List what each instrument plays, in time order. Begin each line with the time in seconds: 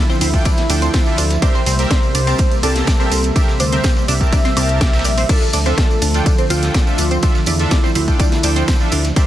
Already playing: analog synth pad D3 F3 A3 E5, synth pluck E4, soft synth lead E4
0.09 synth arpeggio sound C4 C5, snare, tambourine
0.21 analog synth bass D2, synth arpeggio sound C4 C5, synth pluck E4, soft synth lead E4, open hi-hat, ride, tambourine
0.34 supersaw synth D4 F4 A4 G5, kick, closed hi-hat, ride, tambourine
0.45 synth arpeggio sound D4 D5, kick, closed hi-hat, ride, tambourine
0.57 snare, closed hi-hat, tambourine
0.70 analog synth bass D2, supersaw synth F3 D4 A4 G5, synth arpeggio sound D4 D5, open hi-hat, ride, tambourine
0.82 synth arpeggio sound C4 C5, closed hi-hat, tambourine
0.93 synth arpeggio sound C4 C5, kick, snare, closed hi-hat, ride, tambourine
1.06 supersaw synth D4 F4 A4 E5, tambourine
1.18 analog synth bass D2, synth arpeggio sound D4 D5, open hi-hat, ride, tambourine
1.30 snare, closed hi-hat, tambourine
1.42 analog synth pad C3 G3 A#3 E5, supersaw synth C4 G4 A#4 E5, synth arpeggio sound D4 D5, soft synth lead C5, synth pluck C5, kick, closed hi-hat, ride, tambourine
1.55 synth arpeggio sound C4 C5, tambourine
1.66 analog synth bass C2, synth arpeggio sound C4 C5, snare, open hi-hat, tambourine
1.79 supersaw synth C4 G4 A#4 E5, closed hi-hat, tambourine
1.91 synth arpeggio sound D4 D5, soft synth lead C5, synth pluck C5, kick, snare, closed hi-hat, ride, tambourine
2.03 tambourine
2.15 analog synth bass C2, synth arpeggio sound D4 D5, open hi-hat, ride, tambourine
2.27 synth arpeggio sound C4 C5, supersaw synth C4 G4 A#4 A5, closed hi-hat, ride, tambourine
2.38 synth arpeggio sound C4 C5, kick, closed hi-hat, ride, tambourine
2.51 closed hi-hat, tambourine
2.63 analog synth bass C2, supersaw synth A#3 C4 G4 A5, synth arpeggio sound D4 D5, synth pluck A4, soft synth lead A4, open hi-hat, ride, tambourine
2.75 snare, closed hi-hat, tambourine
2.87 synth arpeggio sound D4 D5, kick, snare, closed hi-hat, ride, tambourine
3.00 synth arpeggio sound C4 C5, supersaw synth C4 G4 A#4 E5, ride, tambourine
3.12 analog synth bass C2, synth arpeggio sound C4 C5, open hi-hat, ride, tambourine
3.24 closed hi-hat
3.36 supersaw synth C4 G4 A#4 E5, synth arpeggio sound D4 D5, kick, closed hi-hat, ride, tambourine
3.48 snare, tambourine
3.60 analog synth bass D2, synth arpeggio sound D4 D5, soft synth lead C5, synth pluck C5, open hi-hat, ride, tambourine
3.72 synth arpeggio sound C4 C5, supersaw synth C4 G4 A#4 E5, closed hi-hat, tambourine
3.84 synth arpeggio sound C4 C5, kick, snare, closed hi-hat, ride, tambourine
3.97 snare, tambourine
4.08 analog synth bass C2, synth arpeggio sound D4 D5, soft synth lead E5, synth pluck E5, open hi-hat, ride, tambourine
4.21 supersaw synth C4 G4 A#4 A5, kick, closed hi-hat, ride, tambourine
4.32 synth arpeggio sound D4 D5, kick, closed hi-hat, ride, tambourine
4.45 synth arpeggio sound C4 C5, snare, closed hi-hat, tambourine
4.57 analog synth bass C2, synth arpeggio sound C4 C5, supersaw synth C4 G4 A#4 A5, open hi-hat, ride, tambourine, high woodblock
4.69 closed hi-hat, tambourine
4.81 synth arpeggio sound D4 D5, kick, snare, closed hi-hat, ride, tambourine
4.87 snare, ride
4.93 supersaw synth C4 G4 A#4 E5, snare, ride, tambourine
4.99 snare, ride
5.04 analog synth bass A#1, synth arpeggio sound D4 D5, open hi-hat, tambourine
5.17 synth arpeggio sound C4 C5, open hi-hat, ride, tambourine
5.29 analog synth pad D3 F3 A3, synth arpeggio sound D4 D5, supersaw synth D4 F4 A4 E5, soft synth lead A4, synth pluck A4, kick, closed hi-hat, crash, ride, tambourine
5.42 tambourine
5.53 analog synth bass D2, synth arpeggio sound D4 D5, snare, open hi-hat, tambourine
5.66 synth arpeggio sound C4 C5, supersaw synth D4 F4 A4 E5, closed hi-hat, tambourine
5.78 synth arpeggio sound C4 C5, soft synth lead A4, synth pluck A4, kick, snare, closed hi-hat, ride, tambourine
5.91 tambourine
6.02 analog synth bass D2, synth arpeggio sound D4 D5, open hi-hat, ride, tambourine
6.14 supersaw synth D4 F4 A4 G5, closed hi-hat, ride, tambourine
6.26 synth arpeggio sound D4 D5, kick, closed hi-hat, ride, tambourine
6.38 synth arpeggio sound C4 C5, closed hi-hat, tambourine
6.50 analog synth bass D2, synth arpeggio sound C4 C5, supersaw synth D4 F4 A4 G5, synth pluck F4, soft synth lead F4, open hi-hat, ride, tambourine
6.62 snare, closed hi-hat, tambourine
6.74 synth arpeggio sound D4 D5, kick, snare, closed hi-hat, ride, tambourine
6.87 supersaw synth D4 F4 A4 E5, ride, tambourine
6.98 analog synth bass D2, synth arpeggio sound D4 D5, open hi-hat, ride, tambourine
7.11 synth arpeggio sound C4 C5, closed hi-hat, tambourine
7.22 synth arpeggio sound C4 C5, supersaw synth D4 F4 A4 E5, analog synth pad D4, kick, closed hi-hat, ride, tambourine
7.35 snare, tambourine
7.46 analog synth bass E2, synth arpeggio sound D4 D5, synth pluck E4, soft synth lead E4, open hi-hat, ride, tambourine
7.59 supersaw synth D4 F4 A4 E5, closed hi-hat, tambourine
7.71 synth arpeggio sound D4 D5, kick, snare, closed hi-hat, ride, tambourine
7.84 synth arpeggio sound C4 C5, snare, tambourine
7.95 analog synth bass D2, synth arpeggio sound C4 C5, synth pluck E4, soft synth lead E4, open hi-hat, ride, tambourine
8.08 supersaw synth D4 F4 A4 G5, kick, closed hi-hat, ride, tambourine
8.20 synth arpeggio sound D4 D5, kick, closed hi-hat, ride, tambourine
8.32 snare, closed hi-hat, tambourine
8.43 analog synth bass D2, supersaw synth F3 D4 A4 G5, synth arpeggio sound D4 D5, open hi-hat, ride, tambourine
8.56 synth arpeggio sound C4 C5, closed hi-hat, tambourine
8.68 synth arpeggio sound C4 C5, kick, snare, closed hi-hat, ride, tambourine
8.80 supersaw synth D4 F4 A4 E5, tambourine
8.92 analog synth bass D2, synth arpeggio sound D4 D5, open hi-hat, ride, tambourine
9.04 snare, closed hi-hat, tambourine
9.16 analog synth pad C3 G3 A#3, supersaw synth C4 G4 A#4 E5, synth arpeggio sound D4 D5, synth pluck C5, soft synth lead C5, kick, closed hi-hat, ride, tambourine